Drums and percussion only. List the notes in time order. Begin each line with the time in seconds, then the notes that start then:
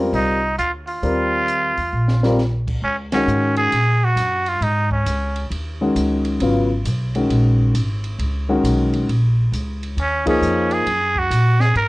0.14 open hi-hat
0.59 closed hi-hat
0.87 open hi-hat
1.03 open hi-hat
1.48 closed hi-hat
1.77 open hi-hat
2.08 snare
2.23 snare
2.38 snare
2.67 kick, crash
3.12 snare, ride
3.28 hi-hat pedal
3.56 ride
3.72 ride
4.17 hi-hat pedal, ride
4.46 ride
4.62 ride
4.91 kick
5.06 hi-hat pedal, ride
5.36 ride
5.51 ride
5.96 hi-hat pedal, ride
6.25 ride
6.40 ride
6.85 hi-hat pedal, ride
7.15 ride
7.30 ride
7.75 hi-hat pedal, ride
8.04 ride
8.19 ride
8.65 hi-hat pedal, ride
8.93 ride
9.09 ride
9.54 hi-hat pedal, ride
9.83 ride
9.98 ride
10.27 kick, ride
10.42 hi-hat pedal
10.71 ride
10.87 ride
11.16 kick
11.31 hi-hat pedal, ride
11.60 snare
11.75 ride